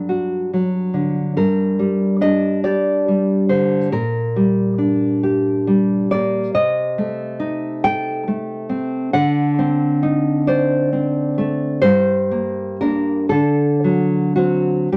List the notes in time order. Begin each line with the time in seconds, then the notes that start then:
Already playing: G2 F#3 D4 A4
0.09 F#4
0.53 F#3
0.94 D3
1.37 G2 A#4
1.79 G3
2.21 D4 D#5
2.64 G4 D5
3.08 G3
3.49 D3 C5
3.92 A#2 A#4
4.36 G3
4.78 D4
5.23 G4
5.67 G3
6.11 A#3 D5
6.54 C3 D#5
6.98 A3
7.40 D#4
7.84 A4 G5
8.28 A3
8.69 C4
9.13 D3 F#5
9.59 C4
10.03 D#4
10.47 C5 D5
10.93 C4
11.38 A3
11.82 G2 C5
12.31 A#3
12.81 A#3 D4 A#4
13.29 D3 A4
13.84 F#3
14.36 F#3 C4 F#4
14.92 G2 G4